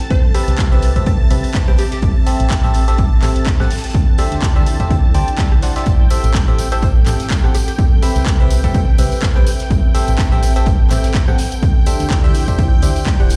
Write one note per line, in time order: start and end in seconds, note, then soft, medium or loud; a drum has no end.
0.00 4.58 C4 medium
0.00 0.74 A4 medium
0.00 0.50 G5 medium
0.00 5.88 A5 medium
0.10 0.20 C2 loud
0.10 0.28 C5 medium
0.10 2.70 E5 medium
0.10 kick loud
0.10 closed hi-hat medium
0.34 0.69 C4 medium
0.34 0.69 G4 medium
0.34 0.69 B4 medium
0.34 0.69 E5 loud
0.34 cross-stick medium
0.34 closed hi-hat medium
0.34 open hi-hat loud
0.48 0.56 C2 medium
0.48 snare soft
0.48 closed hi-hat medium
0.58 kick loud
0.58 snare loud
0.58 clap loud
0.58 closed hi-hat medium
0.58 closed hi-hat loud
0.72 1.02 C2 loud
0.72 0.92 C4 loud
0.72 0.92 G4 medium
0.72 0.92 B4 medium
0.72 0.92 E5 loud
0.82 closed hi-hat medium
0.82 open hi-hat loud
0.96 1.11 C4 loud
0.96 1.11 G4 medium
0.96 1.11 B4 medium
0.96 1.11 E5 loud
0.96 kick medium
0.96 closed hi-hat medium
1.06 1.25 C2 medium
1.06 kick loud
1.06 closed hi-hat medium
1.30 1.40 C2 loud
1.30 1.56 C4 medium
1.30 1.56 G4 medium
1.30 1.56 B4 medium
1.30 1.56 E5 medium
1.30 closed hi-hat medium
1.30 open hi-hat loud
1.44 open hi-hat medium
1.54 kick loud
1.54 snare loud
1.54 clap loud
1.54 closed hi-hat medium
1.68 1.76 C2 medium
1.68 1.83 C4 medium
1.68 1.83 G4 medium
1.68 1.83 B4 medium
1.68 1.83 G5 loud
1.68 cross-stick medium
1.78 1.87 G4 medium
1.78 closed hi-hat medium
1.78 open hi-hat loud
1.91 1.99 G4 medium
1.91 snare medium
1.91 closed hi-hat medium
2.02 2.12 A1 loud
2.02 kick loud
2.02 closed hi-hat medium
2.26 2.61 C4 loud
2.26 2.61 G4 medium
2.26 2.61 A4 medium
2.26 2.61 E5 loud
2.26 closed hi-hat medium
2.26 open hi-hat loud
2.40 2.48 A1 medium
2.40 closed hi-hat medium
2.50 kick loud
2.50 snare loud
2.50 clap loud
2.50 closed hi-hat medium
2.50 closed hi-hat loud
2.64 2.94 A1 loud
2.64 2.84 C4 loud
2.64 2.84 G4 medium
2.64 2.84 A4 medium
2.64 2.84 E5 loud
2.74 closed hi-hat medium
2.74 open hi-hat loud
2.79 4.58 A4 medium
2.79 8.42 G5 medium
2.88 3.03 C4 loud
2.88 3.03 G4 medium
2.88 3.03 A4 medium
2.88 3.03 E5 loud
2.88 snare soft
2.88 closed hi-hat medium
2.98 3.17 A1 medium
2.98 kick loud
2.98 closed hi-hat medium
3.22 3.32 A1 loud
3.22 3.48 C4 medium
3.22 3.48 G4 medium
3.22 3.48 A4 medium
3.22 3.48 E5 medium
3.22 clap medium
3.22 closed hi-hat medium
3.22 open hi-hat loud
3.36 closed hi-hat medium
3.46 kick loud
3.46 clap loud
3.46 closed hi-hat medium
3.60 3.68 A1 medium
3.60 3.69 C4 medium
3.60 3.69 G4 medium
3.60 3.69 A4 medium
3.60 3.69 F#5 loud
3.60 cross-stick medium
3.60 snare medium
3.70 6.54 E4 medium
3.70 snare medium
3.70 closed hi-hat medium
3.70 open hi-hat loud
3.77 snare medium
3.77 closed hi-hat medium
3.84 snare medium
3.84 closed hi-hat medium
3.89 snare medium
3.89 closed hi-hat medium
3.94 4.04 D2 loud
3.94 kick loud
3.94 closed hi-hat medium
4.18 4.53 D4 loud
4.18 4.53 G4 medium
4.18 4.53 C5 medium
4.18 4.53 E5 loud
4.18 cross-stick medium
4.18 closed hi-hat medium
4.18 open hi-hat loud
4.31 4.40 D2 medium
4.31 snare soft
4.31 closed hi-hat medium
4.42 kick loud
4.42 snare loud
4.42 clap loud
4.42 closed hi-hat medium
4.56 4.86 D2 loud
4.56 4.76 D4 loud
4.56 4.76 G4 medium
4.56 6.54 C5 medium
4.56 4.76 C5 medium
4.56 4.76 E5 loud
4.66 closed hi-hat medium
4.66 open hi-hat loud
4.80 4.95 D4 loud
4.80 4.95 G4 medium
4.80 4.95 C5 medium
4.80 4.95 E5 loud
4.80 kick medium
4.80 closed hi-hat medium
4.91 5.09 D2 medium
4.91 kick loud
4.91 closed hi-hat medium
5.14 5.24 D2 loud
5.14 5.35 D4 medium
5.14 5.35 G4 medium
5.14 5.35 C5 medium
5.14 5.35 G5 medium
5.14 open hi-hat loud
5.28 closed hi-hat medium
5.38 5.55 D4 medium
5.38 5.55 G4 medium
5.38 5.55 C5 medium
5.38 5.55 E5 medium
5.38 kick loud
5.38 snare loud
5.38 clap loud
5.38 closed hi-hat medium
5.38 closed hi-hat loud
5.52 5.60 C2 loud
5.52 cross-stick medium
5.62 5.74 D4 medium
5.62 5.74 G4 medium
5.62 5.74 C5 medium
5.62 5.74 F#5 medium
5.62 snare loud
5.62 closed hi-hat medium
5.62 open hi-hat loud
5.76 5.85 D4 medium
5.76 5.85 G4 medium
5.76 5.85 C5 medium
5.76 5.85 E5 loud
5.76 snare medium
5.76 closed hi-hat medium
5.86 5.96 A1 loud
5.86 12.26 C4 medium
5.86 13.36 G5 medium
5.86 kick loud
5.86 closed hi-hat medium
5.86 tambourine soft
6.10 6.45 C4 medium
6.10 6.45 G4 medium
6.10 6.45 A4 medium
6.10 6.45 E5 loud
6.10 closed hi-hat medium
6.10 open hi-hat loud
6.10 tambourine medium
6.24 6.32 A1 medium
6.24 8.42 A4 medium
6.24 closed hi-hat medium
6.24 tambourine soft
6.34 kick loud
6.34 snare loud
6.34 clap loud
6.34 closed hi-hat medium
6.34 tambourine soft
6.48 6.78 A1 loud
6.48 6.68 C4 loud
6.48 6.68 G4 medium
6.48 6.68 A4 medium
6.48 6.68 E5 loud
6.58 closed hi-hat medium
6.58 open hi-hat loud
6.58 tambourine medium
6.72 6.87 C4 loud
6.72 6.87 G4 medium
6.72 6.87 A4 medium
6.72 6.79 C5 medium
6.72 6.87 E5 loud
6.72 snare soft
6.72 closed hi-hat medium
6.72 tambourine medium
6.82 7.01 A1 medium
6.82 6.91 C5 medium
6.82 kick loud
6.82 closed hi-hat medium
6.82 tambourine soft
7.06 7.16 A1 loud
7.06 7.32 C4 medium
7.06 7.32 G4 medium
7.06 7.32 A4 medium
7.06 7.32 E5 medium
7.06 clap medium
7.06 closed hi-hat medium
7.06 open hi-hat loud
7.06 tambourine medium
7.20 snare medium
7.20 closed hi-hat medium
7.20 tambourine soft
7.30 kick loud
7.30 snare loud
7.30 clap loud
7.30 closed hi-hat loud
7.30 closed hi-hat medium
7.30 tambourine soft
7.44 7.52 A1 medium
7.44 7.53 C4 medium
7.44 7.53 G4 medium
7.44 7.53 A4 medium
7.44 7.53 F#5 loud
7.44 cross-stick medium
7.54 7.63 G4 medium
7.54 closed hi-hat medium
7.54 open hi-hat loud
7.54 tambourine medium
7.68 7.75 G4 medium
7.68 snare soft
7.68 closed hi-hat medium
7.68 tambourine soft
7.79 7.88 C2 loud
7.79 kick loud
7.79 closed hi-hat medium
7.79 tambourine soft
8.02 8.37 C4 medium
8.02 8.37 G4 medium
8.02 8.37 B4 medium
8.02 8.37 E5 loud
8.02 cross-stick medium
8.02 closed hi-hat medium
8.02 open hi-hat loud
8.02 tambourine medium
8.10 10.38 B4 medium
8.16 8.24 C2 medium
8.16 snare soft
8.16 closed hi-hat medium
8.16 tambourine medium
8.26 kick loud
8.26 snare loud
8.26 clap loud
8.26 closed hi-hat medium
8.26 tambourine soft
8.40 8.70 C2 loud
8.40 8.60 C4 loud
8.40 8.60 G4 medium
8.40 8.60 B4 medium
8.40 8.60 E5 loud
8.50 10.38 E5 medium
8.50 closed hi-hat medium
8.50 open hi-hat loud
8.50 tambourine medium
8.64 8.79 C4 loud
8.64 8.79 G4 medium
8.64 9.31 A4 medium
8.64 8.79 B4 medium
8.64 8.79 E5 loud
8.64 kick medium
8.64 closed hi-hat medium
8.64 tambourine soft
8.74 8.93 C2 medium
8.74 kick loud
8.74 closed hi-hat loud
8.74 closed hi-hat medium
8.74 tambourine soft
8.98 9.08 C2 loud
8.98 9.24 C4 medium
8.98 9.24 G4 medium
8.98 9.24 B4 medium
8.98 9.24 E5 medium
8.98 closed hi-hat medium
8.98 open hi-hat loud
8.98 tambourine medium
9.12 open hi-hat medium
9.12 tambourine medium
9.22 kick loud
9.22 snare loud
9.22 clap loud
9.22 closed hi-hat medium
9.22 tambourine soft
9.36 9.44 C2 medium
9.36 9.51 C4 medium
9.36 9.51 G4 medium
9.36 9.51 B4 medium
9.36 9.51 G5 loud
9.36 cross-stick medium
9.47 closed hi-hat medium
9.47 open hi-hat loud
9.47 tambourine loud
9.59 snare medium
9.59 closed hi-hat medium
9.59 tambourine medium
9.70 9.80 A1 loud
9.70 kick loud
9.70 closed hi-hat medium
9.70 tambourine soft
9.95 10.29 C4 loud
9.95 10.29 G4 medium
9.95 10.29 A4 medium
9.95 10.29 E5 loud
9.95 closed hi-hat medium
9.95 open hi-hat loud
9.95 tambourine medium
10.00 12.26 A4 medium
10.08 10.16 A1 medium
10.08 closed hi-hat medium
10.08 tambourine medium
10.19 kick loud
10.19 snare loud
10.19 clap loud
10.19 closed hi-hat medium
10.19 tambourine soft
10.32 10.62 A1 loud
10.32 10.52 C4 loud
10.32 10.52 G4 medium
10.32 10.52 A4 loud
10.32 10.52 E5 loud
10.43 13.36 G5 medium
10.43 closed hi-hat medium
10.43 open hi-hat loud
10.43 tambourine loud
10.55 10.71 C4 loud
10.55 10.71 G4 medium
10.55 10.71 A4 loud
10.55 10.71 E5 loud
10.55 snare soft
10.55 closed hi-hat medium
10.55 tambourine medium
10.66 10.85 A1 medium
10.66 kick loud
10.66 closed hi-hat loud
10.66 closed hi-hat medium
10.66 tambourine soft
10.90 11.00 A1 loud
10.90 11.16 C4 medium
10.90 11.16 G4 medium
10.90 11.16 A4 medium
10.90 11.16 E5 medium
10.90 clap medium
10.90 closed hi-hat medium
10.90 open hi-hat loud
10.90 tambourine loud
11.04 snare medium
11.04 closed hi-hat medium
11.04 tambourine medium
11.14 kick loud
11.14 snare loud
11.14 clap loud
11.14 closed hi-hat loud
11.14 closed hi-hat medium
11.14 tambourine soft
11.28 11.36 A1 medium
11.28 11.37 C4 medium
11.28 11.37 G4 medium
11.28 11.37 A4 medium
11.28 11.37 F#5 loud
11.28 cross-stick medium
11.38 13.36 E4 medium
11.38 snare loud
11.38 closed hi-hat medium
11.38 open hi-hat loud
11.38 tambourine medium
11.52 closed hi-hat medium
11.52 tambourine medium
11.63 11.72 D2 loud
11.63 13.36 C5 medium
11.63 kick loud
11.63 closed hi-hat medium
11.63 closed hi-hat loud
11.63 tambourine soft
11.86 12.21 D4 loud
11.86 12.21 G4 medium
11.86 12.21 C5 medium
11.86 12.21 E5 loud
11.86 cross-stick medium
11.86 closed hi-hat medium
11.86 open hi-hat loud
11.86 tambourine medium
12.00 12.08 D2 medium
12.00 snare soft
12.00 closed hi-hat medium
12.00 tambourine medium
12.10 kick loud
12.10 snare loud
12.10 clap loud
12.10 closed hi-hat medium
12.24 12.54 D2 loud
12.24 12.44 D4 loud
12.24 12.44 G4 medium
12.24 12.44 C5 medium
12.24 12.44 E5 loud
12.34 closed hi-hat medium
12.34 open hi-hat loud
12.34 tambourine medium
12.48 12.63 D4 loud
12.48 12.63 G4 medium
12.48 12.63 C5 medium
12.48 12.63 E5 loud
12.48 kick medium
12.48 closed hi-hat medium
12.48 tambourine medium
12.58 12.77 D2 medium
12.58 kick loud
12.58 closed hi-hat medium
12.58 closed hi-hat loud
12.58 tambourine soft
12.82 13.14 D2 medium
12.82 13.08 D4 medium
12.82 13.08 G4 medium
12.82 13.08 C5 medium
12.82 13.08 E5 medium
12.82 closed hi-hat medium
12.82 open hi-hat loud
12.82 tambourine loud
12.96 open hi-hat medium
12.96 tambourine medium
13.06 kick loud
13.06 snare loud
13.06 clap loud
13.06 closed hi-hat medium
13.20 13.36 D1 medium
13.20 13.35 D4 medium
13.20 13.35 G4 medium
13.20 13.35 C5 medium
13.20 13.35 F#5 loud
13.20 cross-stick medium
13.30 closed hi-hat medium
13.30 open hi-hat loud
13.30 tambourine loud